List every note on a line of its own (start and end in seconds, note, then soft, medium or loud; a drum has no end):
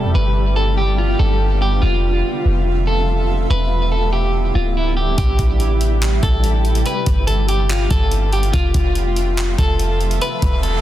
0.00 0.14 E2 loud
0.00 0.13 C3 medium
0.00 1.79 G3 medium
0.00 0.13 A3 medium
0.00 0.13 E4 medium
0.00 1.79 G4 medium
0.00 0.11 A4 medium
0.00 impact medium
0.14 1.15 G1 loud
0.14 1.81 D3 medium
0.14 1.81 B3 medium
0.14 3.47 F4 medium
0.14 0.54 B4 loud
0.56 0.76 A4 medium
0.78 0.97 G4 medium
0.98 1.18 F4 medium
1.19 1.80 G1 loud
1.19 1.59 A4 medium
1.62 1.81 G4 medium
1.82 2.23 F1 loud
1.82 3.48 C3 medium
1.82 3.48 F3 medium
1.82 3.48 A3 medium
1.82 2.83 F4 loud
1.82 3.48 E5 medium
2.45 3.46 F1 loud
2.87 3.46 A4 medium
3.50 4.51 E1 loud
3.50 5.16 D3 medium
3.50 6.82 G3 medium
3.50 5.16 B3 medium
3.50 6.82 E4 medium
3.50 6.82 G4 medium
3.50 3.90 B4 loud
3.92 4.12 A4 medium
4.13 4.52 G4 medium
4.55 5.15 D1 loud
4.55 4.75 F4 medium
4.77 4.96 E4 medium
4.97 5.17 G4 medium
5.18 5.38 A1 loud
5.18 6.84 C3 medium
5.18 6.84 A3 medium
5.18 6.19 G4 loud
5.18 kick loud
5.18 closed hi-hat medium
5.39 6.20 A1 loud
5.39 kick loud
5.39 closed hi-hat medium
5.60 closed hi-hat medium
5.81 closed hi-hat medium
6.02 clap loud
6.02 closed hi-hat medium
6.23 6.83 A1 loud
6.23 6.82 A4 medium
6.23 kick medium
6.23 closed hi-hat medium
6.44 closed hi-hat medium
6.65 closed hi-hat soft
6.75 closed hi-hat medium
6.86 8.52 D3 medium
6.86 8.52 G3 medium
6.86 8.52 B3 medium
6.86 10.18 F4 medium
6.86 8.52 G4 medium
6.86 7.26 B4 loud
6.86 closed hi-hat medium
7.06 7.87 G1 loud
7.06 kick loud
7.06 closed hi-hat medium
7.27 7.47 A4 medium
7.27 closed hi-hat medium
7.48 7.69 G4 medium
7.48 closed hi-hat medium
7.69 7.90 F4 medium
7.69 clap loud
7.69 closed hi-hat medium
7.91 8.51 G1 loud
7.91 8.30 A4 medium
7.91 kick medium
7.91 closed hi-hat medium
8.11 closed hi-hat medium
8.33 8.53 G4 medium
8.33 closed hi-hat soft
8.43 closed hi-hat medium
8.53 8.74 F1 loud
8.53 10.20 C3 medium
8.53 10.20 F3 medium
8.53 10.20 A3 medium
8.53 9.54 F4 loud
8.53 10.81 E5 medium
8.53 kick loud
8.53 closed hi-hat medium
8.74 9.55 F1 loud
8.74 kick loud
8.74 closed hi-hat medium
8.95 closed hi-hat medium
9.16 closed hi-hat medium
9.37 clap loud
9.37 closed hi-hat medium
9.58 10.19 F1 loud
9.58 10.18 A4 medium
9.58 kick medium
9.58 closed hi-hat medium
9.79 closed hi-hat medium
10.01 closed hi-hat soft
10.11 closed hi-hat medium
10.21 10.81 D3 medium
10.21 10.81 G3 medium
10.21 10.81 B3 medium
10.21 10.81 G4 medium
10.21 10.61 B4 loud
10.21 closed hi-hat medium
10.21 noise sweep medium
10.42 10.81 E1 loud
10.42 kick loud
10.42 closed hi-hat medium
10.63 10.81 A4 medium
10.63 closed hi-hat medium